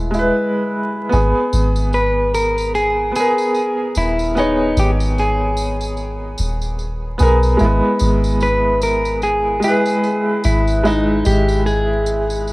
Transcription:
Already playing: D#1
0.11 G#3 E4, tambourine
0.19 B4
1.09 G#1 B3 G#4, tambourine
1.53 G#1, tambourine
1.76 tambourine
1.93 B4, tambourine
2.34 A#4, tambourine
2.57 tambourine
2.75 G#4, tambourine
3.11 B3, tambourine
3.16 G#4 A#4
3.38 tambourine
3.54 tambourine
3.95 D#1 E4, tambourine
4.19 tambourine
4.35 B3 D#4 G#4, tambourine
4.39 C#5
4.77 G#1 G4, tambourine
5.00 tambourine
5.18 G#4, tambourine
5.57 tambourine
5.81 tambourine
5.97 tambourine
6.38 D#1, tambourine
6.62 tambourine
6.79 tambourine
7.18 B1 B3 G#4, tambourine
7.22 A#4
7.43 tambourine
7.57 G#1 G#3 E4, tambourine
7.65 B3
8.00 G#1, tambourine
8.24 tambourine
8.40 B4, tambourine
8.81 A#4, tambourine
9.05 tambourine
9.22 G#4, tambourine
9.60 G#3, tambourine
9.64 E4 G#4 B4
9.85 tambourine
10.04 tambourine
10.44 G#1 E4, tambourine
10.68 tambourine
10.84 G#3 D#4 E4 E5, tambourine
11.25 G#1 G4, tambourine
11.49 tambourine
11.66 G#4, tambourine
12.06 tambourine
12.30 tambourine
12.47 tambourine

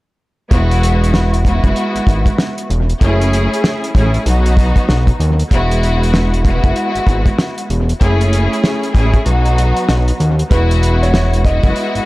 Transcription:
0.51 E1 G#3 B3 E4 F#4, kick, closed hi-hat
0.71 closed hi-hat
0.83 closed hi-hat
1.04 closed hi-hat
1.14 snare
1.34 closed hi-hat
1.45 G#3 B3 E4 F#4, kick, closed hi-hat
1.64 F#1, kick, closed hi-hat
1.76 closed hi-hat
1.95 G#1, closed hi-hat
2.07 G#1, kick, closed hi-hat
2.26 kick, closed hi-hat
2.38 snare
2.58 closed hi-hat
2.70 E1, closed hi-hat
2.90 closed hi-hat
3.01 F#1 A3 C#4 E4 G#4, kick, closed hi-hat
3.21 closed hi-hat
3.33 closed hi-hat
3.54 closed hi-hat
3.64 snare
3.84 closed hi-hat
3.95 A1 A3 C#4 E4 G#4, kick, closed hi-hat
4.14 closed hi-hat
4.26 B1 F#3 B3 D#4 F#4, closed hi-hat
4.46 closed hi-hat
4.57 kick, closed hi-hat
4.76 kick, closed hi-hat
4.89 B1, snare
5.07 kick, closed hi-hat
5.20 D#2, closed hi-hat
5.39 closed hi-hat
5.51 E1 G#3 B3 E4 F#4, kick, closed hi-hat
5.71 closed hi-hat
5.83 closed hi-hat
6.03 closed hi-hat
6.14 snare
6.34 closed hi-hat
6.45 G#3 B3 E4 F#4, kick, closed hi-hat
6.64 F#1, kick, closed hi-hat
6.76 closed hi-hat
6.95 G#1, closed hi-hat
7.07 G#1, kick, closed hi-hat
7.26 kick, closed hi-hat
7.39 snare
7.58 closed hi-hat
7.70 E1, closed hi-hat
7.89 closed hi-hat
8.01 F#1 A3 C#4 E4 G#4, kick, closed hi-hat
8.21 closed hi-hat
8.33 closed hi-hat
8.53 closed hi-hat
8.64 snare
8.83 closed hi-hat
8.95 A1 A3 C#4 E4 G#4, kick, closed hi-hat
9.14 kick, closed hi-hat
9.26 B1 F#3 B3 D#4 F#4, closed hi-hat
9.45 closed hi-hat
9.58 closed hi-hat
9.76 closed hi-hat
9.89 B1, snare
10.08 closed hi-hat
10.20 D#2, closed hi-hat
10.39 closed hi-hat
10.51 E1 G#3 B3 E4 F#4 B4, kick, closed hi-hat
10.71 closed hi-hat
10.83 closed hi-hat
11.02 C#5, closed hi-hat
11.14 snare
11.34 closed hi-hat
11.45 G#3 B3 E4 F#4 D#5, kick, closed hi-hat
11.63 F#1, kick, closed hi-hat
11.76 closed hi-hat
11.95 G#1, closed hi-hat

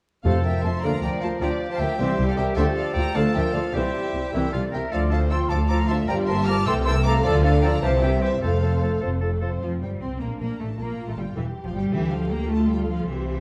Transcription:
0.24 F1 F2 C3 F3 A3 A4 C5 F5
0.44 A#4 E5 G5
0.63 F1 F2 A3 F4 E5 A5 C6
0.82 D2 D3 A#3 F4 A#4 D5 F5 A#5
1.01 D2 F3 D4 D5 G5 A#5
1.21 D2 A#3 F4 C5 F5 A5
1.40 D2 F3 D4 G4 D5 G5 A#5
1.70 C5 F5 A5
1.78 D2 A#3 G4 A#4 E5 G5
1.98 C2 E3 G3 C4 G4 C5 E5
2.18 C2 G3 E4
2.28 A4 D5 F5
2.37 C2 C4 G4 A#4 E5 G5
2.55 D2 D3 F3 A3 G4 A4 C5 E5
2.74 A4 D5 F5
2.93 D2 A3 F4 D5 G5 A#5
3.14 D2 D3 F3 A3 F4 A4 D5 F5 A5
3.34 D2 F3 D4 A#4 E5 G5
3.53 D2 A3 F4 A4 D5 F5
3.73 C2 E3 G3 C4 E4 G4 C5 E5
4.13 C2 C4 G4
4.33 C2 E3 C4 E4 A#4 E5 G5
4.52 C2 G3 E4 F4 A4 D5 F5
4.72 C2 C4 G4 A#4 E5 G5
4.92 D2 F3 F4 A4 D5 F5
5.09 F3 A3 D4 A4 C5 F5 A5
5.30 F3 F4 A4 G5 C6 E6
5.49 D2 F3 A3 D4 F4 A4 F5 A5 D6
5.69 F3 F4 A4 F5 A#5 D6
5.88 F3 A3 D4 A4 E5 A5 C6
6.08 G1 G2 F3 G3 F4 G4 A#4 D5 G5 A#5
6.26 F3 A#3 G4 A#4 E5 A5 C6
6.46 F3 G3 F4 A#4 A5 D6 F6
6.66 C2 C3 E3 A3 A4 G5 C6 E6
6.84 E3 A#3 A4 A#4 G5 C6 E6
7.03 E3 A3 A4 F5 A#5 D6
7.23 D2 D3 F3 F4 A4 D5
7.43 F3 A3 D4 A4 D5 F5
7.61 F3 F4 A4 D5 G5 A#5
7.82 C2 C3 E3 G3 E4 G4 C5 F5 A5
8.00 E3 C4 G4 A#4 E5 G5
8.21 E3 G3 E4 G4 C5 E5
8.42 F1 F2 F3 A3 A4 C5 F5
8.62 F3 C4 A4 C5
8.82 F3 A3 A4
9.01 F1 F2 F3 C4 A4 C5
9.20 F3 A3 A4
9.41 F3 C4 A4 C5
9.61 F1 F3 C4 F5
9.81 G1 G3 G5
10.01 C2 C4 C6
10.19 A#1 A#3 D4 A#5
10.40 A#1 A#3 A#5
10.59 A1 A3 A5
10.78 A#1 A#3 F4 A#5
11.07 A1 A3 A5
11.17 G1 G3 G5
11.35 E1 E3 G4 E5
11.65 F1 F3 F5
11.74 G1 G3 G5
11.93 D2 D3 E3 G4 A4 E5
12.11 F3 F5
12.30 A#3 A#5
12.50 A3 F4 A4 A5
12.69 G3 G5
12.88 F3 F5
13.08 C2 E3 C4 G4 C5 E5

